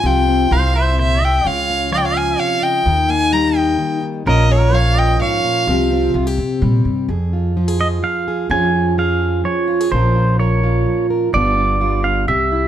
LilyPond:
<<
  \new Staff \with { instrumentName = "Fiddle" } { \time 3/4 \key f \minor \tempo 4 = 127 g''4 f''8 e''8 e''8 g''8 | f''4 f''32 g''32 f''16 aes''8 f''8 g''8~ | g''8 aes''8 bes''8 g''4 r8 | ees''8 des''8 f''8 g''8 f''4~ |
f''4 r2 | r2. | r2. | r2. |
r2. | }
  \new Staff \with { instrumentName = "Pedal steel guitar" } { \time 3/4 \key f \minor r4 c''8 c''8 c''8 e''8 | des''4 des''32 ees''32 des''16 f''8 des''8 ees''8~ | ees''8 f''8 g''8 ees''4 r8 | bes'8 bes'8 des''8 ees''8 des''4 |
r2. | r4. ees''8 f''4 | aes''4 f''4 des''4 | c''4 des''4. r8 |
d''4. f''8 e''4 | }
  \new Staff \with { instrumentName = "Steel-string acoustic guitar" } { \time 3/4 \key f \minor << { <f c' f'>8 c'8 e'8 c'4. | f'8 des'2~ des'8 | ees'8 bes2 ees'8 | <f des' f' bes'>8 des'2~ des'8 |
<f c' f' g'>8 c'8 f'16 g'16 c'4. | aes'8 f'8 f'16 aes'16 f'4 aes'8 | <f des' f' aes'>8 f'8 aes'8 f'4 f'16 aes'16 | <f des' f' bes'>8 f'8 bes'8 f'4 bes'8 |
<g b d' f'>8 d'8 f'8 d'8 g'8 e'8 | } \\ { c4 c4 bes,8 c8 | des4 f4 c8 des8 | ees4 g4 ees4 | bes,4 f4 aes,8 bes,8 |
c4 c4 g4 | f,4 f4 f4 | f,4 f4 f4 | bes,4 f4 f4 |
g,4 g4 c4 | } >> }
  \new Staff \with { instrumentName = "Upright bass" } { \clef bass \time 3/4 \key f \minor c,4 c,2 | des,2 r4 | ees,2 r4 | bes,,2 r4 |
c,4 c,8 c8 bes,8 g,8 | f,2 r4 | f,2 r4 | bes,,2 r4 |
g,,2 c,4 | }
>>